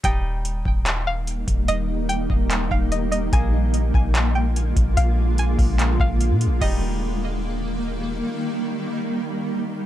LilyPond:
<<
  \new Staff \with { instrumentName = "Synth pluck" } { \time 4/4 \key ees \major \tempo 4 = 146 g''4 r4. f''4. | ees''4 g''4. f''8 ees''8 ees''8 | aes''4 r4. g''4. | f''4 aes''4. f''8 r4 |
ees''2. r4 | r1 | }
  \new Staff \with { instrumentName = "Kora" } { \time 4/4 \key ees \major << { ees''1~ | ees''1~ | ees''1~ | ees''1 |
<g ees' ees''>1~ | <g ees' ees''>1 | } \\ { <g ees'>1~ | <g ees'>1 | <bes aes'>1~ | <bes aes'>1 |
r1 | r1 | } >> }
  \new Staff \with { instrumentName = "Ambient pad" } { \time 4/4 \key ees \major <ees g bes ees'>1~ | <ees g bes ees'>1 | <d aes bes f'>1~ | <d aes bes f'>1 |
<ees g bes ees'>1~ | <ees g bes ees'>1 | }
  \new Staff \with { instrumentName = "808-style bass" } { \clef bass \time 4/4 \key ees \major ees,,4. ees,,2 ees,,8 | ees,,4. ees,,4 ees,,4. | bes,,4. bes,,2 bes,,8 | bes,,4. bes,,4 bes,,8. bes,16. bes,,16. |
ees,,1 | r1 | }
  \new DrumStaff \with { instrumentName = "Drums" } \drummode { \time 4/4 <hh bd>4 hh8 bd8 <hc hh>4 hh8 <hh bd>8 | hh4 hh8 bd8 <hc hh>8 bd8 hh8 hh8 | <hh bd>4 hh8 bd8 <hc hh>4 hh8 <hh bd>8 | hh4 hh8 <hho bd>8 <hc hh>8 bd8 hh8 hh8 |
<cymc bd>4 r4 r4 r4 | r4 r4 r4 r4 | }
>>